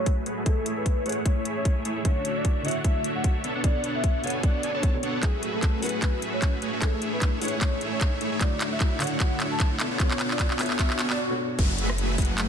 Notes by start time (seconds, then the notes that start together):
Already playing: F#3 A3 C#4 E4 F#4 G#4 B4 C#5 E5, riser
0.06 kick, closed hi-hat
0.26 A3 F#4 G#4 B4 C#5, closed hi-hat
0.37 A3 F#4 G#4 B4 E5
0.44 A3 E4 G#4 A4 B4 C#5 E5, kick, closed hi-hat
0.48 C#5
0.66 closed hi-hat
0.77 B4
0.86 kick, closed hi-hat
1.04 A3 E4 G#4 B4 C#5 F#5, closed hi-hat
1.08 C#5, closed hi-hat
1.12 closed hi-hat
1.26 A3 E4 G#4 C#5 E5, kick, closed hi-hat
1.45 closed hi-hat
1.56 C#5
1.65 kick, closed hi-hat
1.85 A3 E4 G#4 C#5 E5, closed hi-hat
1.96 A3 E4 G#4 C#5 E5
2.03 D3 A3 D4 E4 F#4 C#5 E5, kick, closed hi-hat
2.07 C#5
2.25 closed hi-hat
2.36 D5
2.45 kick, closed hi-hat
2.63 D3 A3 D4 E4 F#4 C#5 E5 F#5, closed hi-hat
2.67 C#5, closed hi-hat
2.71 closed hi-hat
2.84 A3 D4 F#4 C#5 E5, kick, closed hi-hat
3.04 closed hi-hat
3.15 F#5
3.24 kick, closed hi-hat
3.44 B3 D4 A4 C#5 E5, closed hi-hat
3.55 B3 D4 A4 C#5 F#5
3.62 B2 B3 D4 A4 C#5 D5 F#5, kick, closed hi-hat
3.84 closed hi-hat
3.95 E5
4.04 kick, closed hi-hat
4.22 B2 B3 D4 A4 C#5 F#5 G#5, closed hi-hat
4.27 closed hi-hat
4.30 closed hi-hat
4.43 B3 D4 A4 C#5 D5 F#5, kick, closed hi-hat
4.63 B3 D4 A4 C#5 G#5, closed hi-hat
4.74 B3 D4 A4 C#5 A5
4.83 kick, closed hi-hat
4.93 B2 B3 D4 A4 C#5
5.03 B3 D4 A4 C#5 F#5, closed hi-hat
5.21 F#3 A3 C#4 E4 F#4 G#4 B4 E5, kick, clap, closed hi-hat
5.25 B4
5.43 closed hi-hat
5.54 A4
5.63 kick, clap, closed hi-hat
5.80 F#3 A3 C#4 E4 F#4 G#4 B4 F#5, open hi-hat
5.86 closed hi-hat
5.89 closed hi-hat
6.02 A3 F#4 G#4 B4 E5, kick, clap, closed hi-hat
6.22 closed hi-hat
6.33 C#5
6.42 kick, clap, closed hi-hat
6.62 A3 F#4 G#4 B4 C#5, closed hi-hat
6.73 A3 F#4 G#4 B4 E5
6.80 A3 E4 G#4 A4 B4 C#5 E5, kick, clap, closed hi-hat
6.84 C#5
7.02 closed hi-hat
7.13 B4
7.22 kick, clap, closed hi-hat
7.39 A3 E4 G#4 B4 C#5 F#5, open hi-hat
7.45 closed hi-hat
7.48 closed hi-hat
7.61 A3 E4 G#4 C#5 E5, kick, clap, closed hi-hat
7.81 closed hi-hat
7.92 C#5
8.01 kick, clap, closed hi-hat
8.21 A3 E4 G#4 C#5 E5, closed hi-hat
8.32 A3 E4 G#4 C#5 E5
8.39 D3 A3 D4 E4 F#4 C#5 D5 E5, kick, clap, closed hi-hat
8.43 C#5
8.61 clap, closed hi-hat
8.72 E5
8.80 kick, clap, closed hi-hat
8.98 D3 A3 D4 E4 F#4 C#5 F#5, clap, open hi-hat
9.04 closed hi-hat
9.07 closed hi-hat
9.20 A3 D4 F#4 C#5 E5 F#5, kick, clap, closed hi-hat
9.40 clap, closed hi-hat
9.51 A5
9.60 kick, clap, closed hi-hat
9.80 B3 D4 A4 C#5 E5, clap, closed hi-hat
9.91 B3 D4 A4 C#5 F#5
9.98 B2 B3 D4 A4 C#5 F#5, kick, clap, closed hi-hat
10.11 clap
10.20 clap, closed hi-hat
10.31 D5, clap
10.39 kick, clap, closed hi-hat
10.51 clap
10.57 B2 B3 D4 A4 C#5 E5 G#5, clap, open hi-hat
10.63 closed hi-hat
10.66 closed hi-hat
10.70 clap
10.79 B3 D4 A4 C#5 E5 F#5, kick, clap, closed hi-hat, swell
10.90 clap
10.99 B3 D4 A4 C#5 G#5, clap, closed hi-hat
11.10 B3 D4 A4 C#5 D5 A5, clap
11.29 B2 B3 D4 A4 C#5
11.59 F#1 A3 F#4 G#4 B4 E5, kick, closed hi-hat, crash, downlifter
11.79 closed hi-hat
11.90 cross-stick
11.98 closed hi-hat
12.18 F#1 A3 F#4 G#4 B4 F#5, kick, closed hi-hat, open hi-hat
12.25 closed hi-hat
12.38 F#1 A3 F#4 G#4 B4 E5, clap, closed hi-hat